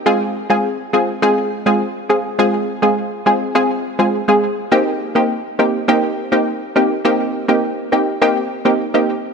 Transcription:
\new Staff \with { instrumentName = "Synth stab" } { \time 4/4 \key f \minor \tempo 4 = 103 <aes c' f' aes'>8. <aes c' f' aes'>16 r8 <aes c' f' aes'>16 r16 <aes c' f' aes'>8. <aes c' f' aes'>16 r8 <aes c' f' aes'>16 r16 | <aes c' f' aes'>8. <aes c' f' aes'>8. <aes c' f' aes'>8 <aes c' f' aes'>16 r8 <aes c' f' aes'>16 r16 <aes c' f' aes'>16 r8 | <bes c' ees' g'>8. <bes c' ees' g'>16 r8 <bes c' ees' g'>16 r16 <bes c' ees' g'>8. <bes c' ees' g'>16 r8 <bes c' ees' g'>16 r16 | <bes c' ees' g'>8. <bes c' ees' g'>8. <bes c' ees' g'>8 <bes c' ees' g'>16 r8 <bes c' ees' g'>16 r16 <bes c' ees' g'>16 r8 | }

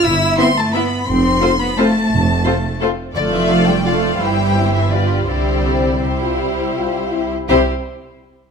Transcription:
<<
  \new Staff \with { instrumentName = "Violin section" } { \time 3/4 \key c \major \tempo 4 = 169 e'''4 c'''8 a''8 b''4 | c'''4. b''8 a''4~ | a''2 r4 | d''8 e''8 f''8 g''8 f''4 |
g''4. e''8 d''4 | d''2 c''4~ | c''2 r4 | c''8 r2 r8 | }
  \new Staff \with { instrumentName = "Violin section" } { \time 3/4 \key c \major r4 <e' e''>4 <e' e''>4 | r4 <a' c''>4 <a' c''>4 | r4 <a' c''>4 <a' c''>4 | <a' d''>2 <a' d''>4 |
<g' c''>2 <g' b'>4 | <g' c''>2 <g' c''>4~ | <g' c''>2~ <g' c''>8 r8 | <g' c''>8 r2 r8 | }
  \new Staff \with { instrumentName = "French horn section" } { \time 3/4 \key c \major r4 <b e'>4 <b e'>4 | r4 <c' f'>4 <c' f'>4 | r4 <c' f'>4 <c' f'>4 | r4 <d' f'>4 <d' f'>4 |
r4 <c' e'>4 <b f'>4 | r4 c'4. f'8 | e'4 f'4 e'4 | <c' e'>8 r2 r8 | }
  \new Staff \with { instrumentName = "Viola section" } { \time 3/4 \key c \major r4 <b e'>4 <b e'>4 | r4 <c' f'>4 <c' f'>4 | r4 <c' f'>4 <c' f'>4 | <a f'>2 <a f'>4 |
<e e'>2 <g f'>4 | <g e'>2 <g e'>4~ | <g e'>2~ <g e'>8 r8 | <g e'>8 r2 r8 | }
  \new Staff \with { instrumentName = "Cello section" } { \clef bass \time 3/4 \key c \major e'4 c'8 a8 b4 | c'4. b8 a4~ | a2 r4 | d8 e8 f8 g8 f4 |
g4. e8 d4 | d2 c4~ | c2 r4 | c'8 r2 r8 | }
  \new Staff \with { instrumentName = "Double bass section" } { \clef bass \time 3/4 \key c \major g,,4 r2 | f,,4 r2 | f,,4 r2 | f,,2. |
g,,2. | c,2.~ | c,2~ c,8 r8 | c,8 r2 r8 | }
>>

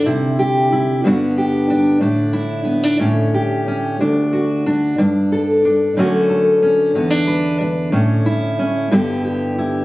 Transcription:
\new Staff \with { instrumentName = "Steel-string acoustic guitar" } { \time 6/8 \key d \major \tempo 4. = 61 << { <d e'>8 g'8 e'8 <d b d' fis'>8 g'8 d'8 | d'8 e'8 b16 d'16 cis'8 g'8 cis'8 | d'8 fis'8 d'8 d'8 a'8 d'8 | <d a cis' fis'>8 a'8 cis'8 b16 d'16 b'8 d'8 |
cis'8 e'8 cis'8 <d b e' g'>8 g'8 e'8 | } \\ { c4. g,4. | a,4. a,4. | d,4. g,4. | fis,4. e,4. |
a,4. g,4. | } >> }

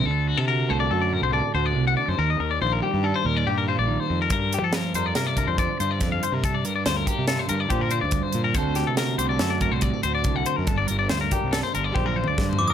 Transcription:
<<
  \new Staff \with { instrumentName = "Glockenspiel" } { \time 5/4 \key g \minor \tempo 4 = 141 r1 r4 | r1 r4 | r1 r4 | r1 r4 |
r1 r4 | r1 r8 d'''16 ees'''16 | }
  \new Staff \with { instrumentName = "Clean electric guitar" } { \time 5/4 \key g \minor a'8 fis'16 a'16 bes'8 c''16 d''16 a'16 d''16 bes'16 c''16 d''8 c''16 d''8 fis''16 d''16 c''16 | bes'16 ees''16 bes'16 d''16 c''16 bes'16 g'8 a'16 c''16 bes'16 d''16 g'16 bes'16 c''16 d''8 c''8 bes'16 | bes'8 g'16 a'16 bes'8 c''16 d''16 bes'16 d''16 bes'16 c''16 d''8 c''16 d''8 f''16 c''16 bes'16 | a'16 d''16 bes'16 d''16 c''16 bes'16 g'8 a'16 c''16 bes'16 d''16 g'16 bes'16 c''16 d''8 c''8 bes'16 |
c''8 g'16 a'16 bes'8 c''16 d''16 a'16 d''16 bes'16 c''16 d''8 c''16 d''8 fis''16 c''16 bes'16 | a'16 d''16 bes'16 d''16 c''16 bes'16 g'8 a'16 c''16 bes'16 d''16 g'16 bes'16 c''16 d''8 c''8 bes'16 | }
  \new Staff \with { instrumentName = "Clean electric guitar" } { \time 5/4 \key g \minor << { r4 fis'8 a'8 fis'4 a'8 fis'4. | r4 f'8 g'8 d'16 f'8. g'8 f'4. | r4 f'8 bes'8 f'4 c''8 f'4. | r4 f'8 bes'8 f'4 c''8 f'4. |
<a c' fis' a'>4 fis'8 g'16 a'16 fis'4 g'16 a'16 fis'4. | r4 f'8 bes'8 d'16 f'8. c''8 f'4. | } \\ { d4. a4 a,4. c8 d8 | ees4. g4 bes,4. ees4 | g,4. g4 d4. g,4 | g,4. g4 d4. g,4 |
d4. a4 a,4. d4 | g,4. g4 d4. g,4 | } >> }
  \new Staff \with { instrumentName = "Fingered electric bass" } { \clef bass \time 5/4 \key g \minor d,8. c8. c,8 fis,8. c,8 r16 d,8 c,8 r16 fis,16 | ees,8 ees,8 bes,,8 r16 g,8 r16 ees,8 g,8. bes,,8 r16 f,8 | g,8. f8. f,8 c8. f,8 r16 g,8 f,8 r16 c16~ | c8 g,8 d,8 r16 c8 r16 g,8 bes,8. d,8 r16 bes,8 |
d,8. c8. c,8 fis,8. c,8 r16 d,8 c,8 r16 fis,16 | g,,8 g,,8 d,8 r16 c,8 r16 g,,8 bes,,8. d,16 g,8 f,8 | }
  \new DrumStaff \with { instrumentName = "Drums" } \drummode { \time 5/4 r4 r4 r4 r4 r4 | r4 r4 r4 r4 r4 | <hh bd>8 hh8 <hh sn>8 hh8 <hh sn>8 <hh bd>8 <hh bd>8 hh8 <hh bd sn>8 hh8 | <hh bd>8 hh8 <hh sn>8 <hh bd>8 <hh sn>8 hh8 <hh bd>8 hh8 <hh bd>8 hh8 |
<hh bd>8 <hh sn>8 <hh sn>8 hh8 <hh sn>8 <hh bd>8 <hh bd>8 hh8 <hh bd>8 hh8 | <hh bd>8 hh8 <hh sn>8 <hh bd>8 <hh sn>8 hh8 \tuplet 3/2 { <bd tommh>8 r8 toml8 <bd sn>8 tomfh8 r8 } | }
>>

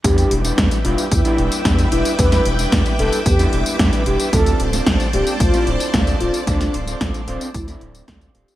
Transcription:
<<
  \new Staff \with { instrumentName = "String machine" } { \time 4/4 \key e \phrygian \tempo 4 = 112 << { d'''1~ | d'''1~ | d'''1~ | d'''1 | } \\ { <b' e'' g''>1~ | <b' e'' g''>1 | <c'' d'' a''>1~ | <c'' d'' a''>1 | } >> }
  \new Staff \with { instrumentName = "Analog polysynth" } { \time 4/4 \key e \phrygian g'8 r4 f'8 e'8 r4 e'8 | b'8 r4 a'8 g'8 r4 g'8 | a'8 r4 g'8 f'8 r4 f'8 | d'8 r4 c'8 e'8 r4 g'8 | }
  \new Staff \with { instrumentName = "Clean electric guitar" } { \time 4/4 \key e \phrygian <g b d' e'>8. <g b d' e'>8 r16 <g b d' e'>8 r16 <g b d' e'>8. <g b d' e'>8 <g b d' e'>8 | <g b d' e'>8. <g b d' e'>8 r16 <g b d' e'>8 r16 <g b d' e'>8. <g b d' e'>8 <g b d' e'>8 | <a c' d' f'>8. <a c' d' f'>8 r16 <a c' d' f'>8 r16 <a c' d' e'>8. <a c' d' f'>8 <a c' d' f'>8 | <a c' d' f'>8. <a c' d' f'>8 r16 <a c' d' f'>8 r16 <a c' d' e'>8. <a c' d' f'>8 <a c' d' f'>8 | }
  \new Staff \with { instrumentName = "Analog synth bass" } { \clef bass \time 4/4 \key e \phrygian e,8 e,,8 e,8 e,,8 e,8 e,,8 e,8 e,,8 | e,8 e,,8 e,8 e,,8 e,8 e,,8 e,8 e,,8 | d,8 d,,8 d,8 d,,8 d,8 d,,8 d,8 d,,8 | d,8 d,,8 d,8 d,,8 d,8 d,,8 d,8 d,,8 | }
  \new DrumStaff \with { instrumentName = "Drums" } \drummode { \time 4/4 <hh bd tamb>16 <hh tamb>16 hh16 <hh tamb>16 <hh bd sn tamb>16 <hh tamb>16 hh16 <hh tamb>16 <hh bd tamb>16 <hh tamb>16 hh16 <hh tamb>16 <hh bd sn tamb>16 <hh tamb>16 hh16 <hh tamb>16 | <hh bd tamb>16 <hh sn tamb>16 hh16 <hh tamb>16 <hh bd sn tamb>16 <hh tamb>16 hh16 <hh tamb>16 <hh bd tamb>16 <hh tamb>16 hh16 <hh tamb>16 <hh bd sn tamb>16 <hh tamb>16 hh16 <hh tamb>16 | <hh bd tamb>16 <hh tamb>16 hh16 <hh tamb>16 <hh bd sn tamb>16 <hh tamb>16 hh16 <hh tamb>16 <hh bd tamb>16 <hh tamb>16 hh16 <hh tamb>16 <hh bd sn tamb>16 <hh tamb>16 hh16 <hh tamb>16 | <hh bd tamb>16 <hh sn tamb>16 hh16 <hh tamb>16 <hh bd sn tamb>16 <hh tamb>16 hh16 <hh tamb>16 <hh bd tamb>16 <hh tamb>16 hh16 <hh tamb>16 <hh bd sn tamb>16 <hh tamb>16 hh16 <hh tamb>16 | }
>>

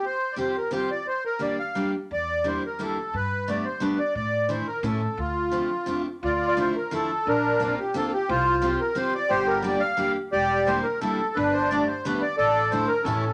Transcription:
<<
  \new Staff \with { instrumentName = "Accordion" } { \time 3/4 \key d \minor \tempo 4 = 176 << { c''8.~ c''32 d''32 c''8 bes'8 c''8 d''8 | c''8 bes'8 d''8 f''4 r8 | d''4 c''8 bes'8 a'4 | b'4 d''8 c''8 b'8 d''8 |
d''4 c''8 bes'8 a'4 | f'2~ f'8 r8 | \tuplet 3/2 { d''8 d''8 d''8 } c''8 bes'8 a'4 | bes'4 bes'8 g'8 a'16. a'32 g'8 |
c''4 c''8 bes'8 c''8 d''8 | c''8 bes'8 d''8 f''4 r8 | d''4 c''8 bes'8 a'4 | b'8 c''8 d''8 c''8 b'8 d''8 |
d''4 c''8 bes'8 a'4 | } \\ { r2. | r2. | r2. | r2. |
r2. | r2. | f'4. r4. | d'4. r4. |
f'4. r4. | g'4. r4. | g'4. r4. | d'4. r4. |
a'4. r8 cis'4 | } >> }
  \new Staff \with { instrumentName = "Steel-string acoustic guitar" } { \time 3/4 \key d \minor r4 <g c' f' g'>8 r8 <g c' f' g'>8 r8 | r4 <g bes d' g'>8 r8 <g bes d' g'>8 r8 | r4 <g bes d' e'>8 r8 <g bes d' e'>8 r8 | r4 <g a b d'>8 r8 <g a b d'>8 r8 |
r4 <e a d' e'>8 r8 <e a cis' e'>8 r8 | r4 <f a c' d'>8 r8 <f a c' d'>8 r8 | r4 <f a d' e'>8 r8 <f a d' e'>8 r8 | r4 <bes c' d' f'>8 r8 <bes c' d' f'>8 r8 |
r4 <g c' f' g'>8 r8 <g c' f' g'>8 r8 | r4 <g bes d' g'>8 r8 <g bes d' g'>8 r8 | r4 <g bes d' e'>8 r8 <g bes d' e'>8 r8 | r4 <g a b d'>8 r8 <g a b d'>8 r8 |
r4 <e a d' e'>8 r8 <e a cis' e'>8 r8 | }
  \new Staff \with { instrumentName = "Upright bass" } { \clef bass \time 3/4 \key d \minor r2. | r2. | e,2 r4 | g,2 r4 |
a,2 a,4 | d,2 r4 | d,2 r4 | bes,,2 r4 |
c,2 r4 | g,,2 r4 | e,,2 r4 | g,,2 r4 |
a,,2 a,,4 | }
>>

